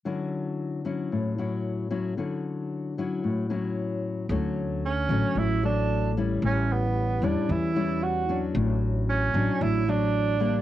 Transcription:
<<
  \new Staff \with { instrumentName = "Tenor saxophone" } { \time 4/4 \key d \major \tempo 4 = 113 r1 | r1 | r4 cis'4 e'8 d'4 r8 | cis'8 b4 d'8 e'4 fis'8. r16 |
r4 cis'4 e'8 d'4. | }
  \new Staff \with { instrumentName = "Nylon-string guitar" } { \time 4/4 \key d \major << { <fis cis' e'>4. <fis cis' e'>4 <fis cis' e'>4 <fis cis' e'>8 | <fis cis' e'>4. <fis cis' e'>4 <fis cis' e'>4. | <fis a cis'>4 r8 <fis a cis'>4 <fis a>4 <g cis' e'>8~ | <g cis' e'>4. <g cis' e'>4 <g cis' e'>4 <fis cis' d'>8~ |
<fis cis' d'>4. <fis cis' d'>4 <fis d'>4 <g bes d'>8 | } \\ { d2 a,2 | d2 a,2 | d2 a,2 | a,2 e2 |
a,2 a,2 | } >> }
  \new Staff \with { instrumentName = "Upright bass" } { \clef bass \time 4/4 \key d \major r1 | r1 | d,4. a,,16 r16 a,,2 | a,,4. e,16 r16 e,2 |
a,,4. a,,16 r16 a,,2 | }
>>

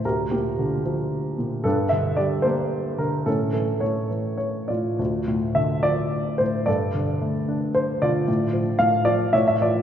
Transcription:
<<
  \new Staff \with { instrumentName = "Grand piano" } { \time 3/4 \key d \minor \tempo 4 = 111 << { bes'8 g'4 r4. | a'8 e''8 d''8 c''4 bes'8 | a'8 a'8 cis''4 cis''8 d''8~ | d''4 e''8 d''4 c''8 |
d''2 c''8 d''8~ | d''4 f''8 d''8 e''16 e''16 d''8 | } \\ { g'4. r4. | d'4. r4. | cis'4. r4 f'8~ | f'4 r2 |
a'2 r8 f'8~ | f'4 r4 cis''8 f'8 | } >> }
  \new Staff \with { instrumentName = "Grand piano" } { \clef bass \time 3/4 \key d \minor d,8 bes,8 d8 f4 bes,8 | g,8 d8 g8 bes4 d8 | a,8 e8 a,8 e4 a,8 | d,8 a,8 d8 f4 a,8 |
g,8 d8 a8 d'4 d8 | a,8 f8 a,8 f8 a,8 e8 | }
>>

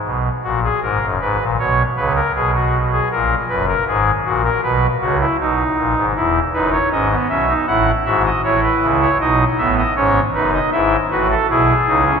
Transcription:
<<
  \new Staff \with { instrumentName = "Pipe organ" } { \time 4/4 \key e \major \tempo 4 = 79 << { r1 | r1 | r8 b'16 cis''16 dis''8 e''8 fis''8 e''16 dis''16 cis''16 b'8 cis''16 | dis''8 e''16 dis''16 cis''8 b'16 dis''16 e''8 b'16 a'16 gis'4 | } \\ { r8 fis'16 gis'16 ais'8 b'8 cis''8 b'16 ais'16 gis'16 fis'8 gis'16 | ais'8 b'16 ais'16 gis'8 fis'16 ais'16 b'8 fis'16 e'16 dis'4 | e'8 dis'8 cis'16 b16 cis'16 dis'16 e'8 fis'8 e'4 | dis'8 b8 cis'8 dis'8 e'8 fis'8 e'8 dis'16 cis'16 | } >> }
  \new Staff \with { instrumentName = "Pipe organ" } { \clef bass \time 4/4 \key e \major <b,, b,>8 <ais,, ais,>8 <gis,, gis,>16 <fis,, fis,>16 <gis,, gis,>16 <ais,, ais,>16 <b,, b,>8 <cis, cis>8 <b,, b,>4 | <ais,, ais,>8 <fis,, fis,>8 <gis,, gis,>8 <ais,, ais,>8 <b,, b,>8 <cis, cis>8 <b,, b,>8 <ais,, ais,>16 <gis,, gis,>16 | <e,, e,>8 <fis,, fis,>8 <gis,, gis,>8 <b,, b,>8 <a,, a,>8 <gis,, gis,>8 <a,, a,>8 <cis, cis>8 | <b,, b,>8 <a,, a,>8 <gis,, gis,>8 <fis,, fis,>8 <gis,, gis,>8 <a,, a,>8 <b,, b,>8 <cis, cis>8 | }
>>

